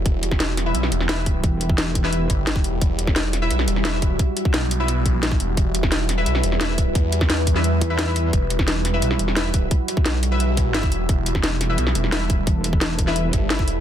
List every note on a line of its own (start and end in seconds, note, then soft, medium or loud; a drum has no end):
0.00 13.80 G3 medium
0.00 13.80 E4 medium
0.05 0.22 E1 medium
0.05 2.80 G4 medium
0.05 kick loud
0.05 closed hi-hat medium
0.23 0.73 E1 loud
0.23 closed hi-hat medium
0.32 kick loud
0.32 snare medium
0.40 snare loud
0.40 closed hi-hat medium
0.57 snare soft
0.57 closed hi-hat medium
0.66 1.07 E4 medium
0.66 1.07 B4 medium
0.66 1.07 E5 medium
0.75 0.90 B1 loud
0.75 closed hi-hat medium
0.83 snare soft
0.92 1.42 E1 loud
0.92 closed hi-hat medium
1.00 snare soft
1.09 1.21 E4 medium
1.09 1.21 B4 medium
1.09 1.21 E5 loud
1.09 snare loud
1.09 closed hi-hat medium
1.26 kick loud
1.26 closed hi-hat medium
1.44 2.28 E1 loud
1.44 kick loud
1.44 closed hi-hat medium
1.61 closed hi-hat medium
1.69 kick loud
1.78 snare loud
1.78 closed hi-hat medium
1.95 kick medium
1.95 closed hi-hat medium
2.04 2.45 E4 medium
2.04 2.45 B4 medium
2.04 2.45 E5 medium
2.04 snare soft
2.13 closed hi-hat medium
2.30 2.63 G1 loud
2.30 kick medium
2.30 closed hi-hat medium
2.47 snare loud
2.47 closed hi-hat medium
2.56 kick loud
2.64 2.80 E1 loud
2.64 closed hi-hat medium
2.81 2.97 E1 medium
2.81 5.56 F#4 medium
2.81 kick loud
2.81 closed hi-hat medium
2.99 3.49 E1 loud
2.99 closed hi-hat medium
3.07 kick loud
3.07 snare medium
3.16 snare loud
3.16 closed hi-hat medium
3.33 snare soft
3.33 closed hi-hat medium
3.42 3.83 E4 medium
3.42 3.83 B4 medium
3.42 3.83 E5 medium
3.51 3.66 B1 medium
3.51 closed hi-hat medium
3.59 snare soft
3.68 4.18 E1 loud
3.68 closed hi-hat medium
3.76 snare soft
3.85 3.97 E4 medium
3.85 3.97 B4 medium
3.85 3.97 E5 loud
3.85 snare loud
3.85 closed hi-hat medium
4.02 kick loud
4.02 closed hi-hat medium
4.19 kick loud
4.19 closed hi-hat medium
4.37 closed hi-hat medium
4.45 kick loud
4.54 5.14 B1 medium
4.54 snare loud
4.54 closed hi-hat medium
4.71 closed hi-hat medium
4.80 5.21 E4 medium
4.80 5.21 B4 medium
4.80 5.21 E5 medium
4.88 closed hi-hat medium
5.06 kick medium
5.06 closed hi-hat medium
5.14 5.39 A#1 medium
5.23 snare loud
5.23 closed hi-hat medium
5.31 kick loud
5.40 5.56 E1 loud
5.40 closed hi-hat medium
5.57 5.73 E1 loud
5.57 8.32 B4 medium
5.57 kick loud
5.57 closed hi-hat medium
5.75 6.25 E1 loud
5.75 closed hi-hat loud
5.83 kick loud
5.83 snare medium
5.92 snare loud
5.92 closed hi-hat medium
6.09 snare soft
6.09 closed hi-hat medium
6.18 6.59 E4 medium
6.18 6.59 B4 medium
6.18 6.59 E5 medium
6.26 6.42 B1 medium
6.26 closed hi-hat medium
6.35 snare soft
6.44 6.94 E1 loud
6.44 closed hi-hat medium
6.52 snare soft
6.61 6.73 E4 medium
6.61 6.73 B4 medium
6.61 6.73 E5 loud
6.61 snare loud
6.61 closed hi-hat medium
6.78 kick loud
6.78 closed hi-hat medium
6.95 7.80 E2 medium
6.95 kick loud
6.95 closed hi-hat medium
7.12 closed hi-hat loud
7.21 kick loud
7.21 snare medium
7.30 snare loud
7.30 closed hi-hat medium
7.47 kick medium
7.47 closed hi-hat medium
7.56 7.88 E4 medium
7.56 7.88 B4 medium
7.56 7.88 E5 loud
7.56 snare soft
7.64 closed hi-hat medium
7.81 8.32 E2 loud
7.81 closed hi-hat loud
7.90 7.98 E4 medium
7.90 7.98 B4 medium
7.90 7.98 E5 medium
7.99 snare loud
7.99 closed hi-hat medium
8.07 8.91 E4 medium
8.07 8.91 B4 medium
8.07 8.91 E5 medium
8.16 closed hi-hat medium
8.33 8.49 E1 medium
8.33 11.08 F#4 medium
8.33 kick loud
8.33 closed hi-hat medium
8.50 9.01 E1 loud
8.50 closed hi-hat loud
8.59 kick loud
8.59 snare medium
8.68 snare loud
8.68 closed hi-hat medium
8.85 snare soft
8.85 closed hi-hat loud
8.94 9.35 E4 medium
8.94 9.35 B4 medium
8.94 9.35 E5 medium
9.02 9.18 B1 loud
9.02 closed hi-hat medium
9.11 snare soft
9.19 9.70 E1 loud
9.19 closed hi-hat loud
9.28 snare soft
9.37 9.49 E4 medium
9.37 9.49 B4 medium
9.37 9.49 E5 loud
9.37 snare loud
9.37 closed hi-hat medium
9.54 kick loud
9.54 closed hi-hat medium
9.71 kick loud
9.71 closed hi-hat medium
9.88 closed hi-hat medium
9.97 kick loud
10.06 10.90 B1 loud
10.06 snare loud
10.06 closed hi-hat medium
10.23 closed hi-hat medium
10.32 10.73 E4 medium
10.32 10.73 B4 medium
10.32 10.73 E5 medium
10.40 closed hi-hat medium
10.57 kick medium
10.57 closed hi-hat medium
10.74 10.87 E4 medium
10.74 10.87 B4 medium
10.74 10.87 E5 loud
10.74 snare loud
10.74 closed hi-hat medium
10.83 kick loud
10.92 11.08 E1 loud
10.92 closed hi-hat medium
11.09 11.25 E1 medium
11.09 13.80 A4 medium
11.09 kick loud
11.09 closed hi-hat medium
11.26 11.77 E1 loud
11.26 closed hi-hat medium
11.35 kick loud
11.35 snare medium
11.44 snare loud
11.44 closed hi-hat medium
11.61 snare soft
11.61 closed hi-hat medium
11.69 12.10 E4 medium
11.69 12.10 B4 medium
11.69 12.10 E5 medium
11.78 11.94 B1 loud
11.78 closed hi-hat medium
11.87 snare soft
11.95 12.46 E1 loud
11.95 closed hi-hat medium
12.04 snare soft
12.12 12.25 E4 loud
12.12 12.25 B4 medium
12.12 12.25 E5 loud
12.12 snare loud
12.12 closed hi-hat medium
12.30 kick loud
12.30 closed hi-hat medium
12.47 13.32 E1 loud
12.47 kick loud
12.47 closed hi-hat medium
12.64 closed hi-hat medium
12.73 kick loud
12.81 snare loud
12.81 closed hi-hat medium
12.99 kick medium
12.99 closed hi-hat medium
13.07 13.48 E4 medium
13.07 13.48 B4 medium
13.07 13.48 E5 medium
13.07 snare soft
13.16 closed hi-hat medium
13.33 13.66 G1 loud
13.33 kick medium
13.33 closed hi-hat medium
13.50 13.63 E4 medium
13.50 13.63 B4 medium
13.50 13.63 E5 loud
13.50 snare loud
13.50 closed hi-hat medium
13.59 kick loud
13.68 13.80 E1 loud
13.68 closed hi-hat medium